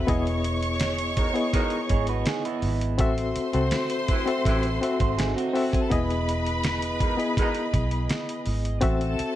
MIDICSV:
0, 0, Header, 1, 9, 480
1, 0, Start_track
1, 0, Key_signature, 4, "major"
1, 0, Tempo, 729040
1, 53, Time_signature, 4, 2, 24, 8
1, 6159, End_track
2, 0, Start_track
2, 0, Title_t, "String section"
2, 0, Program_c, 0, 48
2, 55, Note_on_c, 0, 85, 103
2, 57, Note_on_c, 0, 73, 98
2, 1707, Note_off_c, 0, 85, 0
2, 1708, Note_off_c, 0, 73, 0
2, 1973, Note_on_c, 0, 72, 99
2, 1976, Note_on_c, 0, 84, 104
2, 3459, Note_off_c, 0, 72, 0
2, 3460, Note_off_c, 0, 84, 0
2, 3529, Note_on_c, 0, 60, 55
2, 3529, Note_on_c, 0, 72, 64
2, 3589, Note_on_c, 0, 63, 64
2, 3590, Note_on_c, 0, 75, 70
2, 3591, Note_off_c, 0, 60, 0
2, 3591, Note_off_c, 0, 72, 0
2, 3648, Note_on_c, 0, 76, 74
2, 3651, Note_off_c, 0, 63, 0
2, 3651, Note_off_c, 0, 75, 0
2, 3652, Note_on_c, 0, 64, 71
2, 3700, Note_on_c, 0, 78, 90
2, 3701, Note_on_c, 0, 66, 81
2, 3710, Note_off_c, 0, 76, 0
2, 3712, Note_off_c, 0, 64, 0
2, 3765, Note_on_c, 0, 68, 76
2, 3765, Note_on_c, 0, 80, 79
2, 3766, Note_off_c, 0, 78, 0
2, 3767, Note_off_c, 0, 66, 0
2, 3829, Note_off_c, 0, 68, 0
2, 3829, Note_off_c, 0, 80, 0
2, 3830, Note_on_c, 0, 81, 94
2, 3833, Note_on_c, 0, 69, 82
2, 3885, Note_on_c, 0, 71, 99
2, 3886, Note_on_c, 0, 83, 112
2, 3891, Note_off_c, 0, 81, 0
2, 3893, Note_off_c, 0, 69, 0
2, 5543, Note_off_c, 0, 71, 0
2, 5544, Note_off_c, 0, 83, 0
2, 5809, Note_on_c, 0, 69, 96
2, 5809, Note_on_c, 0, 81, 113
2, 6159, Note_off_c, 0, 69, 0
2, 6159, Note_off_c, 0, 81, 0
2, 6159, End_track
3, 0, Start_track
3, 0, Title_t, "Reed electric piano"
3, 0, Program_c, 1, 4
3, 0, Control_c, 1, 64, 127
3, 0, Note_on_c, 1, 66, 79
3, 0, Note_on_c, 1, 69, 74
3, 0, Note_on_c, 1, 76, 79
3, 47, Note_on_c, 1, 59, 125
3, 52, Note_on_c, 1, 64, 103
3, 57, Note_on_c, 1, 68, 106
3, 61, Note_on_c, 1, 75, 116
3, 62, Control_c, 1, 64, 0
3, 66, Note_off_c, 1, 66, 0
3, 68, Note_off_c, 1, 69, 0
3, 68, Note_off_c, 1, 76, 0
3, 183, Control_c, 1, 64, 127
3, 680, Note_off_c, 1, 59, 0
3, 683, Note_off_c, 1, 64, 0
3, 685, Note_off_c, 1, 68, 0
3, 687, Note_off_c, 1, 75, 0
3, 882, Note_on_c, 1, 59, 84
3, 884, Note_on_c, 1, 64, 72
3, 891, Note_on_c, 1, 68, 80
3, 896, Note_on_c, 1, 75, 80
3, 1607, Note_off_c, 1, 59, 0
3, 1609, Note_off_c, 1, 64, 0
3, 1612, Note_off_c, 1, 68, 0
3, 1615, Note_off_c, 1, 75, 0
3, 1962, Note_on_c, 1, 60, 108
3, 1967, Note_on_c, 1, 66, 98
3, 1973, Note_on_c, 1, 69, 109
3, 1979, Note_on_c, 1, 76, 127
3, 1980, Control_c, 1, 64, 0
3, 2095, Control_c, 1, 64, 127
3, 2237, Note_off_c, 1, 60, 0
3, 2240, Note_off_c, 1, 66, 0
3, 2243, Note_off_c, 1, 69, 0
3, 2246, Note_off_c, 1, 76, 0
3, 2326, Note_on_c, 1, 60, 70
3, 2331, Note_on_c, 1, 66, 72
3, 2334, Note_on_c, 1, 69, 69
3, 2338, Note_on_c, 1, 72, 84
3, 2690, Note_off_c, 1, 60, 0
3, 2692, Note_off_c, 1, 66, 0
3, 2693, Note_off_c, 1, 69, 0
3, 2695, Note_off_c, 1, 72, 0
3, 2802, Note_on_c, 1, 60, 82
3, 2809, Note_on_c, 1, 66, 77
3, 2816, Note_on_c, 1, 69, 76
3, 2820, Note_on_c, 1, 76, 87
3, 3077, Note_off_c, 1, 60, 0
3, 3081, Note_off_c, 1, 66, 0
3, 3084, Note_off_c, 1, 69, 0
3, 3086, Note_off_c, 1, 76, 0
3, 3168, Note_on_c, 1, 60, 72
3, 3175, Note_on_c, 1, 66, 70
3, 3178, Note_on_c, 1, 69, 65
3, 3186, Note_on_c, 1, 76, 87
3, 3531, Note_off_c, 1, 60, 0
3, 3534, Note_off_c, 1, 66, 0
3, 3536, Note_off_c, 1, 69, 0
3, 3539, Note_off_c, 1, 76, 0
3, 3645, Note_on_c, 1, 60, 96
3, 3652, Note_on_c, 1, 66, 81
3, 3658, Note_on_c, 1, 69, 88
3, 3665, Note_on_c, 1, 76, 94
3, 3829, Note_off_c, 1, 60, 0
3, 3832, Note_off_c, 1, 66, 0
3, 3835, Note_off_c, 1, 69, 0
3, 3839, Note_off_c, 1, 76, 0
3, 3886, Note_on_c, 1, 59, 113
3, 3888, Note_on_c, 1, 64, 112
3, 3896, Note_on_c, 1, 68, 100
3, 3899, Note_on_c, 1, 75, 127
3, 3901, Control_c, 1, 64, 0
3, 4030, Control_c, 1, 64, 127
3, 4520, Note_off_c, 1, 59, 0
3, 4521, Note_off_c, 1, 64, 0
3, 4525, Note_off_c, 1, 68, 0
3, 4527, Note_off_c, 1, 75, 0
3, 4723, Note_on_c, 1, 59, 75
3, 4727, Note_on_c, 1, 64, 70
3, 4732, Note_on_c, 1, 68, 71
3, 4736, Note_on_c, 1, 75, 86
3, 5449, Note_off_c, 1, 59, 0
3, 5451, Note_off_c, 1, 64, 0
3, 5454, Note_off_c, 1, 68, 0
3, 5455, Note_off_c, 1, 75, 0
3, 5799, Note_on_c, 1, 60, 127
3, 5804, Note_on_c, 1, 66, 107
3, 5810, Note_on_c, 1, 69, 104
3, 5815, Note_on_c, 1, 76, 127
3, 5821, Control_c, 1, 64, 0
3, 5921, Control_c, 1, 64, 127
3, 6077, Note_off_c, 1, 60, 0
3, 6079, Note_off_c, 1, 66, 0
3, 6082, Note_off_c, 1, 69, 0
3, 6085, Note_off_c, 1, 76, 0
3, 6159, End_track
4, 0, Start_track
4, 0, Title_t, "Clean electric guitar"
4, 0, Program_c, 2, 27
4, 1254, Note_on_c, 2, 73, 68
4, 1259, Note_on_c, 2, 68, 59
4, 1367, Note_off_c, 2, 73, 0
4, 1370, Note_off_c, 2, 68, 0
4, 1376, Note_on_c, 2, 66, 60
4, 1377, Note_on_c, 2, 71, 66
4, 1488, Note_off_c, 2, 71, 0
4, 1489, Note_off_c, 2, 66, 0
4, 1495, Note_on_c, 2, 68, 66
4, 1498, Note_on_c, 2, 63, 58
4, 1608, Note_off_c, 2, 68, 0
4, 1610, Note_off_c, 2, 63, 0
4, 1614, Note_on_c, 2, 64, 63
4, 1618, Note_on_c, 2, 59, 56
4, 1955, Note_off_c, 2, 64, 0
4, 1957, Note_off_c, 2, 59, 0
4, 3299, Note_on_c, 2, 66, 52
4, 3299, Note_on_c, 2, 72, 59
4, 3406, Note_off_c, 2, 66, 0
4, 3409, Note_off_c, 2, 72, 0
4, 3409, Note_on_c, 2, 68, 74
4, 3412, Note_on_c, 2, 63, 58
4, 3525, Note_off_c, 2, 68, 0
4, 3526, Note_off_c, 2, 63, 0
4, 3530, Note_on_c, 2, 66, 66
4, 3533, Note_on_c, 2, 60, 53
4, 3873, Note_off_c, 2, 66, 0
4, 3875, Note_off_c, 2, 60, 0
4, 6159, End_track
5, 0, Start_track
5, 0, Title_t, "French horn section"
5, 0, Program_c, 3, 60
5, 50, Note_on_c, 3, 75, 61
5, 52, Note_on_c, 3, 68, 80
5, 53, Note_on_c, 3, 52, 75
5, 54, Note_on_c, 3, 59, 64
5, 1952, Note_off_c, 3, 75, 0
5, 1953, Note_off_c, 3, 52, 0
5, 1953, Note_off_c, 3, 68, 0
5, 1954, Note_off_c, 3, 59, 0
5, 1980, Note_on_c, 3, 60, 62
5, 1981, Note_on_c, 3, 66, 75
5, 1984, Note_on_c, 3, 57, 69
5, 3877, Note_off_c, 3, 60, 0
5, 3878, Note_off_c, 3, 66, 0
5, 3879, Note_off_c, 3, 57, 0
5, 3902, Note_on_c, 3, 75, 66
5, 3903, Note_on_c, 3, 59, 62
5, 3904, Note_on_c, 3, 52, 67
5, 3906, Note_on_c, 3, 68, 81
5, 5799, Note_off_c, 3, 75, 0
5, 5800, Note_off_c, 3, 52, 0
5, 5800, Note_off_c, 3, 59, 0
5, 5801, Note_off_c, 3, 68, 0
5, 5807, Note_on_c, 3, 66, 73
5, 5810, Note_on_c, 3, 57, 77
5, 5810, Note_on_c, 3, 60, 65
5, 6159, Note_off_c, 3, 57, 0
5, 6159, Note_off_c, 3, 60, 0
5, 6159, Note_off_c, 3, 66, 0
5, 6159, End_track
6, 0, Start_track
6, 0, Title_t, "Horn section"
6, 0, Program_c, 4, 61
6, 772, Note_on_c, 4, 51, 68
6, 772, Note_on_c, 4, 56, 68
6, 772, Note_on_c, 4, 63, 74
6, 774, Note_on_c, 4, 47, 64
6, 874, Note_off_c, 4, 51, 0
6, 874, Note_off_c, 4, 56, 0
6, 874, Note_off_c, 4, 63, 0
6, 875, Note_off_c, 4, 47, 0
6, 1012, Note_on_c, 4, 56, 84
6, 1013, Note_on_c, 4, 51, 82
6, 1013, Note_on_c, 4, 63, 90
6, 1014, Note_on_c, 4, 47, 78
6, 1165, Note_off_c, 4, 56, 0
6, 1166, Note_off_c, 4, 47, 0
6, 1166, Note_off_c, 4, 51, 0
6, 1166, Note_off_c, 4, 63, 0
6, 2697, Note_on_c, 4, 48, 70
6, 2697, Note_on_c, 4, 52, 71
6, 2697, Note_on_c, 4, 57, 68
6, 2697, Note_on_c, 4, 64, 77
6, 2797, Note_off_c, 4, 48, 0
6, 2797, Note_off_c, 4, 52, 0
6, 2797, Note_off_c, 4, 57, 0
6, 2797, Note_off_c, 4, 64, 0
6, 2935, Note_on_c, 4, 48, 83
6, 2936, Note_on_c, 4, 57, 84
6, 2937, Note_on_c, 4, 52, 79
6, 2937, Note_on_c, 4, 64, 86
6, 3087, Note_off_c, 4, 48, 0
6, 3088, Note_off_c, 4, 52, 0
6, 3088, Note_off_c, 4, 57, 0
6, 3088, Note_off_c, 4, 64, 0
6, 4616, Note_on_c, 4, 47, 66
6, 4617, Note_on_c, 4, 51, 67
6, 4617, Note_on_c, 4, 63, 73
6, 4618, Note_on_c, 4, 56, 65
6, 4717, Note_off_c, 4, 47, 0
6, 4718, Note_off_c, 4, 51, 0
6, 4718, Note_off_c, 4, 56, 0
6, 4718, Note_off_c, 4, 63, 0
6, 4855, Note_on_c, 4, 47, 81
6, 4857, Note_on_c, 4, 51, 83
6, 4857, Note_on_c, 4, 56, 82
6, 4857, Note_on_c, 4, 63, 90
6, 5007, Note_off_c, 4, 47, 0
6, 5009, Note_off_c, 4, 51, 0
6, 5009, Note_off_c, 4, 56, 0
6, 5009, Note_off_c, 4, 63, 0
6, 6159, End_track
7, 0, Start_track
7, 0, Title_t, "Fingered electric bass"
7, 0, Program_c, 5, 33
7, 55, Note_on_c, 5, 28, 106
7, 867, Note_off_c, 5, 28, 0
7, 1253, Note_on_c, 5, 32, 80
7, 1468, Note_off_c, 5, 32, 0
7, 1726, Note_on_c, 5, 32, 89
7, 1970, Note_off_c, 5, 32, 0
7, 1970, Note_on_c, 5, 33, 113
7, 2187, Note_off_c, 5, 33, 0
7, 2334, Note_on_c, 5, 36, 91
7, 2441, Note_off_c, 5, 36, 0
7, 2933, Note_on_c, 5, 33, 88
7, 3148, Note_off_c, 5, 33, 0
7, 3295, Note_on_c, 5, 32, 84
7, 3509, Note_off_c, 5, 32, 0
7, 3893, Note_on_c, 5, 28, 104
7, 4707, Note_off_c, 5, 28, 0
7, 5095, Note_on_c, 5, 35, 83
7, 5310, Note_off_c, 5, 35, 0
7, 5574, Note_on_c, 5, 32, 98
7, 5789, Note_off_c, 5, 32, 0
7, 5810, Note_on_c, 5, 33, 113
7, 6027, Note_off_c, 5, 33, 0
7, 6159, End_track
8, 0, Start_track
8, 0, Title_t, "Muted fingered electric bass strokes"
8, 2213, Note_on_c, 9, 29, 46
8, 2279, Note_off_c, 9, 29, 0
8, 6056, Note_on_c, 9, 29, 46
8, 6122, Note_off_c, 9, 29, 0
8, 6159, End_track
9, 0, Start_track
9, 0, Title_t, "Drums"
9, 55, Note_on_c, 9, 36, 116
9, 55, Note_on_c, 9, 42, 94
9, 121, Note_off_c, 9, 36, 0
9, 121, Note_off_c, 9, 42, 0
9, 177, Note_on_c, 9, 42, 43
9, 243, Note_off_c, 9, 42, 0
9, 293, Note_on_c, 9, 42, 76
9, 358, Note_off_c, 9, 42, 0
9, 412, Note_on_c, 9, 42, 50
9, 478, Note_off_c, 9, 42, 0
9, 524, Note_on_c, 9, 42, 88
9, 531, Note_on_c, 9, 38, 103
9, 590, Note_off_c, 9, 42, 0
9, 597, Note_off_c, 9, 38, 0
9, 649, Note_on_c, 9, 42, 56
9, 714, Note_off_c, 9, 42, 0
9, 769, Note_on_c, 9, 42, 65
9, 771, Note_on_c, 9, 36, 90
9, 835, Note_off_c, 9, 42, 0
9, 837, Note_off_c, 9, 36, 0
9, 892, Note_on_c, 9, 42, 39
9, 958, Note_off_c, 9, 42, 0
9, 1011, Note_on_c, 9, 36, 96
9, 1012, Note_on_c, 9, 42, 77
9, 1015, Note_on_c, 9, 38, 38
9, 1076, Note_off_c, 9, 36, 0
9, 1078, Note_off_c, 9, 42, 0
9, 1081, Note_off_c, 9, 38, 0
9, 1121, Note_on_c, 9, 42, 42
9, 1187, Note_off_c, 9, 42, 0
9, 1247, Note_on_c, 9, 42, 65
9, 1251, Note_on_c, 9, 36, 81
9, 1313, Note_off_c, 9, 42, 0
9, 1317, Note_off_c, 9, 36, 0
9, 1362, Note_on_c, 9, 42, 49
9, 1428, Note_off_c, 9, 42, 0
9, 1485, Note_on_c, 9, 42, 73
9, 1492, Note_on_c, 9, 38, 109
9, 1551, Note_off_c, 9, 42, 0
9, 1558, Note_off_c, 9, 38, 0
9, 1614, Note_on_c, 9, 42, 50
9, 1680, Note_off_c, 9, 42, 0
9, 1727, Note_on_c, 9, 46, 69
9, 1792, Note_off_c, 9, 46, 0
9, 1853, Note_on_c, 9, 42, 50
9, 1918, Note_off_c, 9, 42, 0
9, 1966, Note_on_c, 9, 42, 89
9, 1970, Note_on_c, 9, 36, 117
9, 2032, Note_off_c, 9, 42, 0
9, 2035, Note_off_c, 9, 36, 0
9, 2092, Note_on_c, 9, 42, 50
9, 2158, Note_off_c, 9, 42, 0
9, 2210, Note_on_c, 9, 42, 72
9, 2275, Note_off_c, 9, 42, 0
9, 2327, Note_on_c, 9, 42, 51
9, 2392, Note_off_c, 9, 42, 0
9, 2443, Note_on_c, 9, 42, 88
9, 2450, Note_on_c, 9, 38, 107
9, 2509, Note_off_c, 9, 42, 0
9, 2516, Note_off_c, 9, 38, 0
9, 2566, Note_on_c, 9, 42, 60
9, 2632, Note_off_c, 9, 42, 0
9, 2688, Note_on_c, 9, 42, 59
9, 2690, Note_on_c, 9, 36, 84
9, 2754, Note_off_c, 9, 42, 0
9, 2756, Note_off_c, 9, 36, 0
9, 2814, Note_on_c, 9, 42, 45
9, 2880, Note_off_c, 9, 42, 0
9, 2933, Note_on_c, 9, 36, 95
9, 2938, Note_on_c, 9, 42, 83
9, 2941, Note_on_c, 9, 38, 34
9, 2998, Note_off_c, 9, 36, 0
9, 3004, Note_off_c, 9, 42, 0
9, 3007, Note_off_c, 9, 38, 0
9, 3048, Note_on_c, 9, 42, 46
9, 3114, Note_off_c, 9, 42, 0
9, 3180, Note_on_c, 9, 42, 67
9, 3246, Note_off_c, 9, 42, 0
9, 3292, Note_on_c, 9, 42, 50
9, 3294, Note_on_c, 9, 36, 92
9, 3358, Note_off_c, 9, 42, 0
9, 3359, Note_off_c, 9, 36, 0
9, 3414, Note_on_c, 9, 42, 84
9, 3421, Note_on_c, 9, 38, 96
9, 3480, Note_off_c, 9, 42, 0
9, 3487, Note_off_c, 9, 38, 0
9, 3542, Note_on_c, 9, 42, 54
9, 3608, Note_off_c, 9, 42, 0
9, 3657, Note_on_c, 9, 46, 66
9, 3723, Note_off_c, 9, 46, 0
9, 3775, Note_on_c, 9, 36, 100
9, 3782, Note_on_c, 9, 42, 49
9, 3841, Note_off_c, 9, 36, 0
9, 3848, Note_off_c, 9, 42, 0
9, 3894, Note_on_c, 9, 36, 114
9, 3895, Note_on_c, 9, 42, 93
9, 3960, Note_off_c, 9, 36, 0
9, 3960, Note_off_c, 9, 42, 0
9, 4019, Note_on_c, 9, 42, 45
9, 4085, Note_off_c, 9, 42, 0
9, 4139, Note_on_c, 9, 42, 73
9, 4205, Note_off_c, 9, 42, 0
9, 4256, Note_on_c, 9, 42, 54
9, 4322, Note_off_c, 9, 42, 0
9, 4369, Note_on_c, 9, 42, 86
9, 4376, Note_on_c, 9, 38, 119
9, 4435, Note_off_c, 9, 42, 0
9, 4442, Note_off_c, 9, 38, 0
9, 4493, Note_on_c, 9, 42, 62
9, 4558, Note_off_c, 9, 42, 0
9, 4612, Note_on_c, 9, 36, 86
9, 4613, Note_on_c, 9, 42, 58
9, 4678, Note_off_c, 9, 36, 0
9, 4679, Note_off_c, 9, 42, 0
9, 4738, Note_on_c, 9, 42, 42
9, 4804, Note_off_c, 9, 42, 0
9, 4853, Note_on_c, 9, 36, 104
9, 4858, Note_on_c, 9, 42, 82
9, 4861, Note_on_c, 9, 38, 36
9, 4919, Note_off_c, 9, 36, 0
9, 4924, Note_off_c, 9, 42, 0
9, 4927, Note_off_c, 9, 38, 0
9, 4968, Note_on_c, 9, 42, 47
9, 5034, Note_off_c, 9, 42, 0
9, 5094, Note_on_c, 9, 36, 84
9, 5094, Note_on_c, 9, 42, 67
9, 5159, Note_off_c, 9, 36, 0
9, 5160, Note_off_c, 9, 42, 0
9, 5210, Note_on_c, 9, 42, 49
9, 5276, Note_off_c, 9, 42, 0
9, 5329, Note_on_c, 9, 42, 76
9, 5337, Note_on_c, 9, 38, 101
9, 5395, Note_off_c, 9, 42, 0
9, 5402, Note_off_c, 9, 38, 0
9, 5458, Note_on_c, 9, 42, 52
9, 5524, Note_off_c, 9, 42, 0
9, 5567, Note_on_c, 9, 46, 76
9, 5633, Note_off_c, 9, 46, 0
9, 5695, Note_on_c, 9, 42, 51
9, 5761, Note_off_c, 9, 42, 0
9, 5803, Note_on_c, 9, 42, 97
9, 5810, Note_on_c, 9, 36, 124
9, 5869, Note_off_c, 9, 42, 0
9, 5875, Note_off_c, 9, 36, 0
9, 5932, Note_on_c, 9, 42, 47
9, 5998, Note_off_c, 9, 42, 0
9, 6051, Note_on_c, 9, 42, 74
9, 6117, Note_off_c, 9, 42, 0
9, 6159, End_track
0, 0, End_of_file